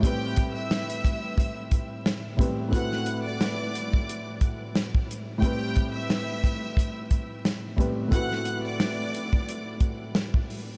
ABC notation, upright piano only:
X:1
M:4/4
L:1/8
Q:"Swing 16ths" 1/4=89
K:Ador
V:1 name="Upright piano"
[A,,G,CB]6- [A,,G,CB] [A,,G,CB] | [A,,A,CEFB]8 | [A,,G,CB]6- [A,,G,CB] [A,,G,CB] | [A,,A,CEFB]8 |]